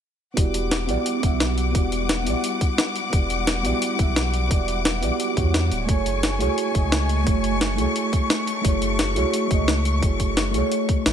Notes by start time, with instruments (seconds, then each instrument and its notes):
0.34 sub bass E1, string section G3 F#5 D6, fm electric piano B3 E4 F#4, kick, closed hi-hat
0.39 fm electric piano G4 D5
0.54 closed hi-hat
0.71 snare, closed hi-hat
0.87 sub bass B1, fm electric piano B3 E4 F#4 G4 D5, closed hi-hat
1.06 closed hi-hat
1.20 sub bass E1, fm electric piano B3 E4 F#4, kick, closed hi-hat
1.25 fm electric piano G4 E5
1.32 sub bass B1
1.40 snare, closed hi-hat
1.58 closed hi-hat
1.72 sub bass E1, fm electric piano B3 E4 F#4, kick, closed hi-hat
1.76 fm electric piano G4 D5
1.92 closed hi-hat
2.09 snare, closed hi-hat
2.23 sub bass B1, fm electric piano B3 E4 F#4, closed hi-hat
2.28 fm electric piano G4 D5
2.44 closed hi-hat
2.61 kick, closed hi-hat
2.78 snare, closed hi-hat
2.96 closed hi-hat
3.10 sub bass E1, fm electric piano B3 E4 F#4, kick, closed hi-hat
3.15 fm electric piano G4 D5
3.30 closed hi-hat
3.47 snare, closed hi-hat
3.63 sub bass B1, fm electric piano B3 E4 F#4 G4 D5, closed hi-hat
3.82 closed hi-hat
3.96 sub bass E1, fm electric piano B3 E4 F#4, kick, closed hi-hat
4.01 fm electric piano G4 E5
4.08 sub bass B1
4.16 snare, closed hi-hat
4.34 closed hi-hat
4.48 sub bass E1, fm electric piano B3 E4 F#4, kick, closed hi-hat
4.52 fm electric piano G4 D5
4.68 closed hi-hat
4.85 snare, closed hi-hat
5.01 sub bass B1, fm electric piano B3 E4 F#4 G4 D5, closed hi-hat
5.20 closed hi-hat
5.35 sub bass E2, fm electric piano B3 E4 F#4 G4 C#5, kick, closed hi-hat
5.54 snare, closed hi-hat
5.71 sub bass D1, closed hi-hat
5.85 sub bass F#1, fm electric piano A3 E4 F#4, string section A3 G#5 C#6, kick, closed hi-hat
5.90 fm electric piano G#4 C#5
6.06 closed hi-hat
6.23 snare, closed hi-hat
6.39 sub bass C#2, fm electric piano A3 E4 F#4 G#4 C#5, closed hi-hat
6.58 closed hi-hat
6.72 sub bass F#1, fm electric piano A3 E4 F#4, kick, closed hi-hat
6.77 fm electric piano G#4 D#5
6.84 sub bass C#2
6.92 snare, closed hi-hat
7.09 closed hi-hat
7.23 sub bass F#1, fm electric piano A3 E4 F#4, kick, closed hi-hat
7.28 fm electric piano G#4 C#5
7.44 closed hi-hat
7.61 snare, closed hi-hat
7.75 sub bass C#2, fm electric piano A3 E4 F#4, closed hi-hat
7.80 fm electric piano G#4 C#5
7.96 closed hi-hat
8.13 kick, closed hi-hat
8.30 snare, closed hi-hat
8.47 closed hi-hat
8.61 sub bass F#1, fm electric piano A3 E4 F#4, kick, closed hi-hat
8.66 fm electric piano G#4 C#5
8.82 closed hi-hat
8.99 snare, closed hi-hat
9.15 sub bass C#2, fm electric piano A3 E4 F#4 G#4 C#5, closed hi-hat
9.34 closed hi-hat
9.48 sub bass F#1, fm electric piano A3 E4 F#4, kick, closed hi-hat
9.52 fm electric piano G#4 D#5
9.60 sub bass C#2
9.68 snare, closed hi-hat
9.85 closed hi-hat
9.99 sub bass F#1, fm electric piano A3 E4 F#4, kick, closed hi-hat
10.04 fm electric piano G#4 C#5
10.20 kick, closed hi-hat
10.37 snare, closed hi-hat
10.51 sub bass C#2, fm electric piano A3 E4 F#4, closed hi-hat
10.56 fm electric piano G#4 C#5
10.72 closed hi-hat
10.89 kick, closed hi-hat
11.06 sub bass A1, snare, closed hi-hat